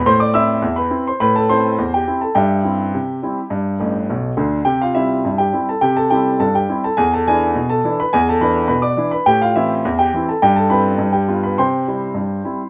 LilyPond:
<<
  \new Staff \with { instrumentName = "Grand piano" } { \time 2/4 \key c \major \tempo 4 = 104 <c'' c'''>16 <d'' d'''>16 <e'' e'''>8. <b' b''>8 <c'' c'''>16 | <b' b''>16 <a' a''>16 <c'' c'''>8. <g' g''>8 <a' a''>16 | <g' e'' g''>2~ | <g' e'' g''>4 r4 |
<g' g''>16 <f' f''>16 <e' e''>8. <g' g''>8 <a' a''>16 | <g' g''>16 <a' a''>16 <g' g''>8 <a' a''>16 <g' g''>8 <a' a''>16 | <gis' gis''>16 <a' a''>16 <gis' gis''>8. <a' a''>8 <b' b''>16 | <gis' gis''>16 <a' a''>16 <b' b''>8 <b' b''>16 <d'' d'''>8 <b' b''>16 |
<g' g''>16 <f' f''>16 <e' e''>8. <g' g''>8 <a' a''>16 | <g' g''>16 <a' a''>16 <b' g'' b''>8. <g' g''>8 <b' b''>16 | <c'' g'' c'''>2 | }
  \new Staff \with { instrumentName = "Grand piano" } { \clef bass \time 2/4 \key c \major a,8 <c' e'>8 e,8 <c' e'>8 | a,8 <c' e'>8 e,8 <c' e'>8 | g,8 <g c' e'>8 c8 <g c' e'>8 | g,8 <a,, a,>8 <b,, b,>8 <d, d>8 |
c8 <g c'>8 g,8 <g c' e'>8 | c8 <g c' e'>8 g,8 <g c' e'>8 | e,8 <e d' e'>8 b,8 <e d' e'>8 | e,8 <e d' e'>8 b,8 <e d' e'>8 |
a,8 <e c'>8 e,8 <e c' e'>8 | g,8 <g c' e'>8 g,8 <g b f'>8 | c8 <g c' e'>8 g,8 <g c' e'>8 | }
>>